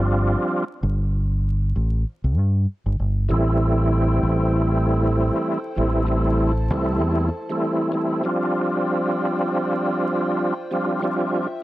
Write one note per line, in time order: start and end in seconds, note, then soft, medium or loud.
0.00 0.34 G1 medium
0.00 0.64 F3 loud
0.00 0.64 G3 medium
0.00 0.64 C4 medium
0.00 0.65 D4 medium
0.00 0.65 F4 loud
0.83 1.72 G1 loud
1.76 2.03 A1 loud
2.24 2.38 C2 loud
2.38 2.65 G2 loud
2.86 2.98 G1 medium
2.99 3.27 G1 medium
3.29 4.19 A1 loud
3.29 5.58 E3 medium
3.29 5.59 G3 medium
3.29 5.59 A3 medium
3.29 5.59 C4 medium
3.29 8.21 E4 medium
3.29 5.60 E4 loud
3.29 8.21 A4 medium
3.29 8.21 C5 medium
3.29 5.75 G5 medium
4.23 5.29 A1 loud
5.76 6.70 A1 loud
5.76 6.05 E3 medium
5.76 6.06 G3 medium
5.76 6.06 A3 medium
5.76 6.07 C4 medium
5.76 6.07 E4 loud
5.76 8.22 A5 medium
6.06 6.52 E3 medium
6.06 6.52 G3 medium
6.06 6.52 A3 medium
6.06 6.53 C4 medium
6.06 6.53 E4 loud
6.70 7.02 C2 loud
6.70 7.28 E3 loud
6.70 7.29 G3 medium
6.70 7.29 A3 medium
6.70 7.29 C4 medium
6.70 7.30 E4 loud
7.02 7.29 E2 loud
7.49 7.91 E3 loud
7.49 7.91 G3 medium
7.49 7.91 A3 medium
7.49 7.92 C4 medium
7.49 7.92 E4 loud
7.92 8.22 E3 medium
7.92 8.22 G3 medium
7.92 8.22 A3 medium
7.92 8.23 C4 medium
7.92 8.23 E4 medium
8.23 10.53 F3 loud
8.23 10.53 G3 medium
8.23 10.54 C4 medium
8.23 10.54 D4 medium
8.23 11.63 F4 medium
8.23 10.54 F4 loud
8.23 11.63 C5 medium
8.23 10.70 D5 medium
8.23 11.63 G5 medium
10.71 11.00 F3 loud
10.71 11.01 G3 medium
10.71 11.01 C4 medium
10.71 11.01 D4 medium
10.71 11.02 F4 loud
10.71 11.63 E5 medium
11.02 11.47 F3 medium
11.02 11.47 G3 medium
11.02 11.48 C4 medium
11.02 11.48 D4 medium
11.02 11.48 F4 loud